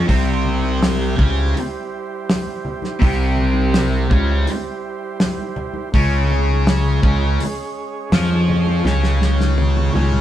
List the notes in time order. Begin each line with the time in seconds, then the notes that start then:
0.08 C2 C3 G3 C4 E4 G4 C5, kick, open hi-hat
0.45 low conga
0.63 high conga
0.83 snare, open hi-hat
1.17 C#2 C#3 C#4, kick, low conga
1.55 open hi-hat, high conga
2.30 snare, open hi-hat
2.46 high conga
2.65 low conga
2.82 snare, high conga
2.99 C2 C3 C4, kick, open hi-hat
3.36 low conga
3.54 high conga
3.74 snare, open hi-hat
4.09 C#2 C#3 C#4, kick, low conga
4.47 open hi-hat, high conga
5.20 snare, open hi-hat
5.38 high conga
5.56 low conga
5.74 high conga
5.93 C#2 C#3 G#3 C#4 G#4 C#5, kick, open hi-hat
6.30 low conga
6.48 high conga
6.67 snare, open hi-hat
7.03 C#2 C#3 C#4, kick, low conga
7.40 open hi-hat, high conga
8.12 F2 F3 F4, snare, open hi-hat
8.29 high conga
8.48 low conga
8.66 high conga
8.84 C#2 C#3 C#4 G4, snare, low conga
9.04 snare
9.21 snare, low conga
9.39 snare, high conga
9.58 high tom
9.77 high tom
9.94 C#2 C#3 C#4, high tom, high conga, low conga
10.12 mid tom